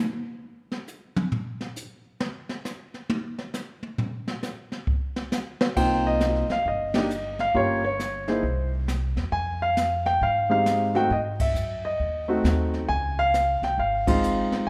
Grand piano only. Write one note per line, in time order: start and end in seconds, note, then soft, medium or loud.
5.76 6.44 A#3 soft
5.76 6.44 C4 soft
5.76 6.44 D#4 medium
5.76 6.44 F4 medium
5.76 6.06 G5 medium
6.07 6.47 D#5 medium
6.52 6.65 F5 medium
6.68 6.93 D#5 medium
6.95 7.09 A#3 medium
6.95 7.08 D4 medium
6.95 7.09 D#4 medium
6.95 7.09 G4 medium
6.95 7.41 D#5 medium
7.40 7.54 F5 medium
7.55 7.80 A#3 medium
7.55 7.81 C#4 medium
7.55 7.80 F4 soft
7.55 7.81 G4 medium
7.55 7.82 C#5 medium
7.85 8.25 C#5 medium
8.28 8.42 A#3 medium
8.28 8.42 D#4 soft
8.28 8.42 E4 medium
8.28 8.42 G#4 medium
8.28 8.70 C5 medium
9.32 9.62 G#5 medium
9.62 10.08 F5 medium
10.06 10.22 G5 medium
10.23 10.50 F5 medium
10.50 10.92 G#3 medium
10.50 10.92 C4 medium
10.50 10.92 D#4 medium
10.50 10.92 G4 medium
10.50 10.92 F5 medium
10.94 11.09 A3 medium
10.94 11.09 C4 medium
10.94 11.09 D#4 medium
10.94 11.09 F#4 medium
10.94 11.12 G5 medium
11.12 11.19 D#5 medium
11.41 11.86 E5 medium
11.85 12.26 D#5 medium
12.28 12.85 A3 medium
12.28 12.86 C4 medium
12.28 12.86 D#4 medium
12.28 12.86 F#4 medium
12.89 13.18 G#5 medium
13.19 13.60 F5 loud
13.64 13.78 G5 medium
13.79 14.06 F5 medium
14.07 14.64 G#3 medium
14.07 14.64 C4 medium
14.07 14.64 D#4 medium
14.07 14.64 F4 medium
14.07 14.49 F5 medium